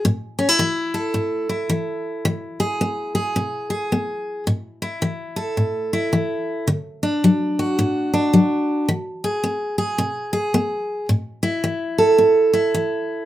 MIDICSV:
0, 0, Header, 1, 2, 480
1, 0, Start_track
1, 0, Tempo, 552486
1, 44, Time_signature, 4, 2, 24, 8
1, 11513, End_track
2, 0, Start_track
2, 0, Title_t, "Steel-string acoustic guitar"
2, 0, Program_c, 0, 25
2, 42, Note_on_c, 0, 45, 72
2, 336, Note_on_c, 0, 61, 56
2, 422, Note_off_c, 0, 61, 0
2, 422, Note_on_c, 0, 64, 47
2, 487, Note_off_c, 0, 45, 0
2, 514, Note_on_c, 0, 52, 62
2, 818, Note_on_c, 0, 69, 52
2, 963, Note_off_c, 0, 52, 0
2, 991, Note_on_c, 0, 45, 58
2, 1288, Note_off_c, 0, 64, 0
2, 1298, Note_on_c, 0, 64, 50
2, 1442, Note_off_c, 0, 45, 0
2, 1473, Note_on_c, 0, 52, 60
2, 1922, Note_off_c, 0, 52, 0
2, 1942, Note_off_c, 0, 69, 0
2, 1955, Note_on_c, 0, 52, 70
2, 2258, Note_on_c, 0, 68, 60
2, 2404, Note_off_c, 0, 52, 0
2, 2440, Note_on_c, 0, 59, 58
2, 2725, Note_off_c, 0, 68, 0
2, 2736, Note_on_c, 0, 68, 51
2, 2887, Note_off_c, 0, 59, 0
2, 2918, Note_on_c, 0, 47, 54
2, 3205, Note_off_c, 0, 68, 0
2, 3215, Note_on_c, 0, 68, 56
2, 3366, Note_off_c, 0, 47, 0
2, 3407, Note_on_c, 0, 59, 52
2, 3851, Note_off_c, 0, 59, 0
2, 3862, Note_off_c, 0, 68, 0
2, 3883, Note_on_c, 0, 45, 64
2, 4184, Note_off_c, 0, 64, 0
2, 4188, Note_on_c, 0, 64, 51
2, 4329, Note_off_c, 0, 45, 0
2, 4361, Note_on_c, 0, 52, 60
2, 4659, Note_on_c, 0, 69, 53
2, 4808, Note_off_c, 0, 52, 0
2, 4841, Note_on_c, 0, 45, 53
2, 5143, Note_off_c, 0, 64, 0
2, 5153, Note_on_c, 0, 64, 53
2, 5288, Note_off_c, 0, 45, 0
2, 5323, Note_on_c, 0, 52, 58
2, 5769, Note_off_c, 0, 52, 0
2, 5785, Note_off_c, 0, 69, 0
2, 5791, Note_off_c, 0, 64, 0
2, 5799, Note_on_c, 0, 50, 65
2, 6107, Note_on_c, 0, 62, 53
2, 6248, Note_off_c, 0, 50, 0
2, 6290, Note_on_c, 0, 54, 56
2, 6595, Note_on_c, 0, 66, 54
2, 6733, Note_off_c, 0, 54, 0
2, 6765, Note_on_c, 0, 45, 56
2, 7058, Note_off_c, 0, 62, 0
2, 7068, Note_on_c, 0, 62, 51
2, 7210, Note_off_c, 0, 45, 0
2, 7242, Note_on_c, 0, 54, 57
2, 7688, Note_off_c, 0, 54, 0
2, 7708, Note_off_c, 0, 62, 0
2, 7720, Note_on_c, 0, 52, 66
2, 7734, Note_off_c, 0, 66, 0
2, 8028, Note_on_c, 0, 68, 61
2, 8167, Note_off_c, 0, 52, 0
2, 8198, Note_on_c, 0, 59, 62
2, 8487, Note_off_c, 0, 68, 0
2, 8498, Note_on_c, 0, 68, 56
2, 8646, Note_off_c, 0, 59, 0
2, 8674, Note_on_c, 0, 47, 57
2, 8963, Note_off_c, 0, 68, 0
2, 8974, Note_on_c, 0, 68, 61
2, 9123, Note_off_c, 0, 47, 0
2, 9158, Note_on_c, 0, 59, 58
2, 9605, Note_off_c, 0, 59, 0
2, 9620, Note_off_c, 0, 68, 0
2, 9636, Note_on_c, 0, 45, 63
2, 9929, Note_on_c, 0, 64, 58
2, 10083, Note_off_c, 0, 45, 0
2, 10110, Note_on_c, 0, 52, 56
2, 10412, Note_on_c, 0, 69, 55
2, 10559, Note_off_c, 0, 52, 0
2, 10586, Note_on_c, 0, 45, 55
2, 10880, Note_off_c, 0, 64, 0
2, 10890, Note_on_c, 0, 64, 52
2, 11036, Note_off_c, 0, 45, 0
2, 11073, Note_on_c, 0, 52, 52
2, 11513, Note_off_c, 0, 52, 0
2, 11513, Note_off_c, 0, 64, 0
2, 11513, Note_off_c, 0, 69, 0
2, 11513, End_track
0, 0, End_of_file